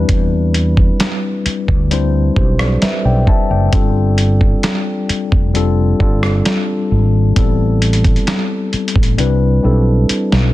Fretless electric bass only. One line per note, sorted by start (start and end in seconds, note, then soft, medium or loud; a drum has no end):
0.09 0.89 E2 loud
1.46 muted fretless electric bass stroke soft
1.68 2.29 D2 medium
2.37 2.77 B1 loud
2.82 muted fretless electric bass stroke soft
3.05 3.25 B1 loud
3.50 3.70 F#1 loud
3.73 4.53 G1 loud
5.10 muted fretless electric bass stroke soft
5.32 5.92 F1 medium
6.00 6.40 G1 loud
6.92 7.31 G#1 loud
7.37 8.17 A1 loud
8.73 muted fretless electric bass stroke soft
8.96 9.16 A1 medium
9.19 9.59 C2 loud
9.64 10.04 B1 loud
10.33 10.52 B1 loud